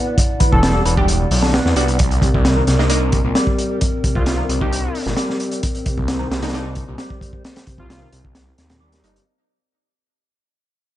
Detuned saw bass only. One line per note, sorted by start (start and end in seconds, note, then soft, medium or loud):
0.53 0.80 E1 medium
0.85 1.25 E1 medium
1.31 1.60 B1 loud
1.65 1.73 E2 medium
1.76 2.28 C2 loud
2.35 2.62 C2 loud
2.67 3.19 C2 loud
3.24 3.32 C2 medium
4.15 4.44 C2 loud
4.49 4.89 C2 loud
5.06 5.14 G1 loud
5.98 6.26 C2 medium
6.31 6.82 C2 loud
6.88 6.96 C2 medium
7.78 8.07 C2 loud
8.13 8.53 C2 loud
8.58 9.03 D#2 medium
9.04 9.20 G1 loud